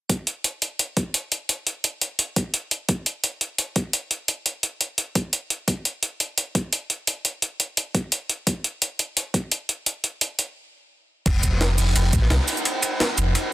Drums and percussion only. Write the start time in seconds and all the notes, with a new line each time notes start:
0.10 kick, closed hi-hat
0.27 closed hi-hat
0.44 closed hi-hat
0.62 closed hi-hat
0.79 closed hi-hat
0.97 kick, closed hi-hat
1.14 closed hi-hat
1.32 closed hi-hat
1.49 closed hi-hat
1.67 closed hi-hat
1.84 closed hi-hat
2.01 closed hi-hat
2.19 closed hi-hat
2.36 kick, closed hi-hat
2.54 closed hi-hat
2.71 closed hi-hat
2.89 kick, closed hi-hat
3.06 closed hi-hat
3.24 closed hi-hat
3.41 closed hi-hat
3.58 closed hi-hat
3.76 kick, closed hi-hat
3.93 closed hi-hat
4.11 closed hi-hat
4.28 closed hi-hat
4.46 closed hi-hat
4.63 closed hi-hat
4.81 closed hi-hat
4.98 closed hi-hat
5.15 kick, closed hi-hat
5.33 closed hi-hat
5.50 closed hi-hat
5.68 kick, closed hi-hat
5.85 closed hi-hat
6.03 closed hi-hat
6.20 closed hi-hat
6.38 closed hi-hat
6.55 kick, closed hi-hat
6.73 closed hi-hat
6.90 closed hi-hat
7.07 closed hi-hat
7.25 closed hi-hat
7.42 closed hi-hat
7.60 closed hi-hat
7.77 closed hi-hat
7.95 kick, closed hi-hat
8.12 closed hi-hat
8.29 closed hi-hat
8.47 kick, closed hi-hat
8.64 closed hi-hat
8.82 closed hi-hat
8.99 closed hi-hat
9.17 closed hi-hat
9.34 kick, closed hi-hat
9.52 closed hi-hat
9.69 closed hi-hat
9.86 closed hi-hat
10.04 closed hi-hat
10.21 closed hi-hat
10.39 closed hi-hat
11.26 kick, closed hi-hat, crash, ride
11.43 kick, closed hi-hat, ride, shaker
11.52 snare
11.61 snare, closed hi-hat, ride
11.70 snare
11.78 closed hi-hat, open hi-hat, shaker
11.96 closed hi-hat, ride
12.05 ride
12.13 kick, closed hi-hat, ride, shaker
12.22 snare
12.30 snare, closed hi-hat, ride
12.40 snare
12.48 open hi-hat, ride, shaker
12.57 shaker
12.65 closed hi-hat, ride
12.82 closed hi-hat, ride, shaker
13.00 snare, closed hi-hat, ride
13.09 ride
13.18 closed hi-hat, ride, shaker
13.35 closed hi-hat, ride